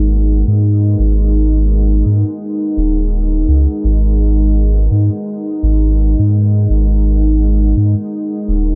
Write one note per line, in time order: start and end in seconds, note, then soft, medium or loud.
0.00 0.44 G#1 medium
0.00 8.75 G#3 medium
0.00 8.75 D#4 medium
0.00 8.75 A#4 medium
0.00 8.75 B4 medium
0.00 8.75 F#5 medium
0.48 0.96 G#2 medium
0.99 2.03 G#1 medium
2.06 2.24 G#2 medium
2.77 3.46 D#1 medium
3.48 3.67 C#2 medium
3.84 4.89 G#1 loud
4.91 5.10 G#2 medium
5.63 6.15 G#1 medium
6.19 6.67 G#2 medium
6.70 7.74 G#1 medium
7.77 7.95 G#2 medium
8.48 8.75 D#1 medium